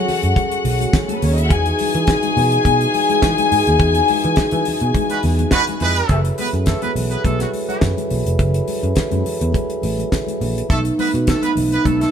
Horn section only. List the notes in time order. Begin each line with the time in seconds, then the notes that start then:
5.09 G#3 F#4 B4
5.52 G#3 F#4 B4
5.81 G#3 E4 B4
6.09 A3 A4
6.38 B3 B4
6.66 A3 A4
6.81 B3 B4
7.10 B3 B4
7.24 A3 A4
7.39 F#3 F#4
7.68 F#3 F#4
10.69 A3 A4
10.98 B3 B4
11.27 A3 A4
11.42 B3 B4
11.71 B3 B4
11.84 A3 A4
12.00 A3 A4